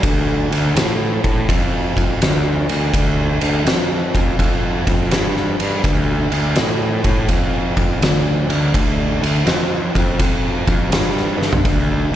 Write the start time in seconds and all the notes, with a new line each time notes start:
0.03 D2, kick, ride
0.50 D2, ride
0.75 A2, snare, ride
1.24 A2, kick, ride
1.49 F2, kick, ride
1.96 F2, kick, ride
2.22 D2, snare, ride
2.69 D2, ride
2.93 D2, kick, ride
3.41 D2, ride
3.65 F2, snare, ride
4.15 F2, kick, ride
4.39 F2, kick, ride
4.87 F2, kick, ride
5.11 G2, snare, ride
5.37 snare
5.60 G2, ride
5.84 D2, kick, ride
6.32 D2, ride
6.56 A2, snare, ride
7.04 A2, kick, ride
7.29 F2, kick, ride
7.77 F2, kick, ride
8.01 D2, snare, ride
8.49 D2, ride
8.74 D2, kick, ride
9.22 D2, ride
9.46 F2, snare, ride
9.95 F2, kick, ride
10.19 F2, kick, ride
10.67 F2, kick, ride
10.90 G2, snare, ride
11.17 snare
11.38 G2, snare
11.53 floor tom
11.65 D2, kick, ride
12.12 D2